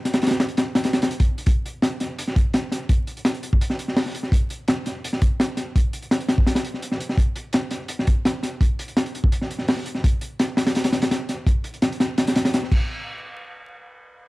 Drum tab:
CC |--------------------------------|--------------------------------|--------------------------------|--------------------------------|
HH |x-x-xxx-x-x-x---x-x-x-x-x-x---x-|x---x---x---x---x---x---x---x---|x---x-x-x-x-x---x---x---o---x---|x---x---x---x---x---x---x---x---|
SD |o-o-ooo-o---o---o-o-o-o---------|--------o---o-----o-----o---o---|--------o---------o---o-o-o---o-|--------o---o-----o-----o---o---|
BD |--------------------------o-----|o-------------------o-----------|o-------------o-----------------|o-------------------o-----------|

CC |--------------------------------|--------------------------------|--------------------------------|--------------------------------|
HH |x---x-x-x-x-x---x-x-x---x---x---|x---x---x---x---x---x---x---x---|x---x-x-x-x-x---x---x---o---x---|x---x---x---x-x-x-x-x-x-x---x---|
SD |--------o---o---o-o---o---o---o-|--------o---o-----o-----o---o---|--------o---------o---o-o-o---o-|--------o---o-o-o-o-o-o-o---o---|
BD |o-------------o-----------------|o-------------------o-----------|o-------------o-----------------|o-------------------------------|

CC |----------------------------x---|--------------------------------|
HH |x---x-x-x-x-x---x-x-x-x-x-------|--------------------------------|
SD |--------o---o---o-o-o-o-o-o-----|--------------------------------|
BD |o---------------------------o---|--------------------------------|